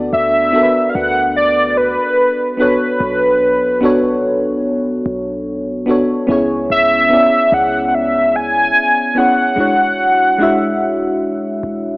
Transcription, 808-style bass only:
0.00 0.11 D2 loud
0.13 0.52 D2 medium
0.95 1.97 D2 loud
3.00 5.02 B1 loud
5.06 5.84 B1 medium
6.29 6.68 C#2 loud
6.70 7.09 C#2 loud
7.52 8.71 C#2 loud
9.58 11.59 E1 loud
11.63 11.97 E1 medium

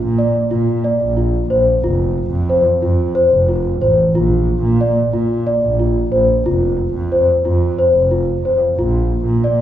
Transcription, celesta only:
0.18 0.45 D5 medium
0.51 0.78 F4 medium
0.84 1.11 D5 medium
1.17 1.44 F4 medium
1.50 1.77 C5 medium
1.84 2.38 F4 medium
2.50 2.77 C5 medium
2.82 3.09 F4 medium
3.15 3.42 C5 medium
3.48 3.76 F4 medium
3.81 4.09 C5 medium
4.15 4.69 F4 medium
4.81 5.08 D5 medium
5.13 5.41 F4 medium
5.47 5.74 D5 medium
5.80 6.07 F4 medium
6.12 6.39 C5 medium
6.46 7.00 F4 medium
7.12 7.39 C5 medium
7.45 7.72 F4 medium
7.79 8.06 C5 medium
8.11 8.38 F4 medium
8.45 8.72 C5 medium
8.79 9.33 F4 medium
9.44 9.61 D5 medium

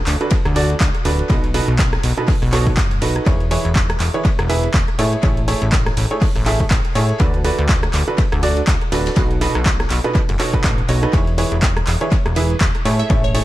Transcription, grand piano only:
0.21 0.35 D3 medium
0.21 0.35 D4 medium
0.21 0.35 F#4 medium
0.21 0.35 A4 medium
0.21 0.35 B4 medium
0.56 0.72 D3 loud
0.56 0.72 D4 medium
0.56 0.72 F#4 loud
0.56 0.72 A4 medium
0.56 0.72 D5 loud
1.05 1.27 D4 medium
1.05 1.27 F#4 medium
1.05 1.27 A4 medium
1.05 1.27 B4 loud
1.30 1.46 B2 medium
1.30 1.46 D#4 medium
1.30 1.46 F#4 medium
1.30 1.46 A4 medium
1.30 1.46 B4 medium
1.54 1.71 B2 medium
1.54 1.71 D#4 medium
1.54 1.71 F#4 medium
1.54 1.71 A4 medium
1.54 1.71 B4 loud
2.18 2.31 B2 medium
2.18 2.31 D#4 medium
2.18 2.31 F#4 medium
2.18 2.31 A4 medium
2.18 2.31 B4 medium
2.53 2.69 B2 loud
2.53 2.69 D#4 medium
2.53 2.69 F#4 medium
2.53 2.69 A4 medium
2.53 2.69 C#5 loud
3.02 3.23 D#4 medium
3.02 3.23 F#4 medium
3.02 3.23 A4 medium
3.02 3.23 B4 medium
3.26 3.43 E3 medium
3.26 3.43 E4 medium
3.26 3.43 G#4 medium
3.26 3.43 B4 medium
3.26 3.43 C#5 medium
3.51 3.67 E3 medium
3.51 3.67 E4 medium
3.51 3.67 G#4 medium
3.51 3.67 B4 medium
3.51 3.67 C#5 loud
4.14 4.28 E3 medium
4.14 4.28 E4 medium
4.14 4.28 G#4 medium
4.14 4.28 B4 medium
4.14 4.28 C#5 medium
4.49 4.66 E3 loud
4.49 4.66 E4 medium
4.49 4.66 G#4 medium
4.49 4.66 B4 loud
4.49 4.66 E5 loud
4.99 5.20 A3 medium
4.99 5.20 E4 medium
4.99 5.20 G#4 medium
4.99 5.20 A4 medium
4.99 5.20 C#5 medium
5.23 5.40 A3 medium
5.23 5.40 E4 medium
5.23 5.40 G#4 medium
5.23 5.40 A4 medium
5.23 5.40 C#5 medium
5.48 5.64 A3 medium
5.48 5.64 E4 medium
5.48 5.64 G#4 medium
5.48 5.64 A4 medium
5.48 5.64 C#5 loud
6.11 6.25 A3 medium
6.11 6.25 E4 medium
6.11 6.25 G#4 medium
6.11 6.25 A4 medium
6.11 6.25 C#5 medium
6.46 6.63 A3 loud
6.46 6.63 E4 medium
6.46 6.63 G#4 medium
6.46 6.63 A4 medium
6.46 6.63 E5 loud
6.95 7.17 E4 medium
6.95 7.17 G#4 medium
6.95 7.17 A4 medium
6.95 7.17 C#5 loud
7.20 7.36 D3 medium
7.20 7.36 D4 medium
7.20 7.36 F#4 medium
7.20 7.36 A4 medium
7.20 7.36 B4 medium
7.45 7.61 D3 medium
7.45 7.61 D4 medium
7.45 7.61 F#4 medium
7.45 7.61 A4 medium
7.45 7.61 B4 loud
8.08 8.21 D3 medium
8.08 8.21 D4 medium
8.08 8.21 F#4 medium
8.08 8.21 A4 medium
8.08 8.21 B4 medium
8.43 8.59 D3 loud
8.43 8.59 D4 medium
8.43 8.59 F#4 medium
8.43 8.59 A4 medium
8.43 8.59 D5 loud
8.92 9.13 D4 medium
8.92 9.13 F#4 medium
8.92 9.13 A4 medium
8.92 9.13 B4 loud
9.17 9.33 B2 medium
9.17 9.33 D#4 medium
9.17 9.33 F#4 medium
9.17 9.33 A4 medium
9.17 9.33 B4 medium
9.41 9.58 B2 loud
9.41 9.58 D#4 medium
9.41 9.58 F#4 medium
9.41 9.58 A4 medium
9.41 9.58 B4 loud
10.04 10.18 B2 medium
10.04 10.18 D#4 medium
10.04 10.18 F#4 medium
10.04 10.18 A4 medium
10.04 10.18 B4 medium
10.40 10.51 B2 medium
10.40 10.52 D#4 medium
10.40 10.51 F#4 medium
10.40 10.51 A4 medium
10.40 10.51 C#5 loud
10.54 10.78 B2 medium
10.54 10.78 D#4 medium
10.54 10.78 F#4 medium
10.54 10.78 A4 medium
10.54 10.78 B4 loud
10.89 11.01 D#4 medium
10.89 11.01 F#4 medium
10.89 11.01 A4 medium
10.89 11.01 C#5 medium
11.03 11.12 D#4 loud
11.03 11.12 F#4 medium
11.03 11.12 A4 medium
11.03 11.12 B4 loud
11.13 11.30 E3 medium
11.13 11.30 E4 medium
11.13 11.30 G#4 medium
11.13 11.30 B4 medium
11.13 11.30 C#5 medium
11.38 11.54 E3 loud
11.38 11.54 E4 medium
11.38 11.54 G#4 medium
11.38 11.54 B4 medium
11.38 11.54 C#5 loud
12.01 12.15 E3 medium
12.01 12.15 E4 medium
12.01 12.15 G#4 medium
12.01 12.15 B4 medium
12.01 12.15 C#5 medium
12.36 12.53 E3 loud
12.36 12.53 E4 medium
12.36 12.53 G#4 medium
12.36 12.53 B4 medium
12.36 12.53 E5 loud
12.85 13.07 A3 medium
12.85 13.07 E4 medium
12.85 13.07 G#4 medium
12.85 13.07 A4 medium
12.85 13.07 C#5 medium
13.10 13.26 A3 medium
13.10 13.26 E4 medium
13.10 13.26 G#4 medium
13.10 13.26 A4 medium
13.10 13.26 C#5 medium
13.35 13.44 A3 medium
13.35 13.44 E4 medium
13.35 13.44 G#4 medium
13.35 13.44 A4 medium
13.35 13.44 C#5 loud

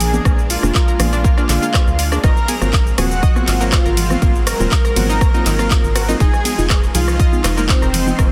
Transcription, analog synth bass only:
0.00 0.20 A#1 loud
0.25 0.57 A#1 medium
0.63 0.72 F1 loud
1.00 1.32 A#1 loud
1.49 1.59 A#1 medium
1.87 2.18 D2 loud
2.24 2.33 G#1 loud
2.62 2.93 G#1 medium
2.98 3.30 D#1 loud
3.48 3.80 G#1 medium
3.86 4.17 G#1 medium
4.22 4.54 G#1 medium
4.60 4.68 D#1 loud
4.96 5.28 G#1 loud
5.46 5.78 G#1 medium
5.84 6.15 G#1 loud
6.20 6.30 F1 loud
6.58 6.89 F1 medium
6.95 7.27 C2 loud
7.44 7.76 F1 medium
7.82 8.13 F1 medium
8.19 8.32 F1 medium

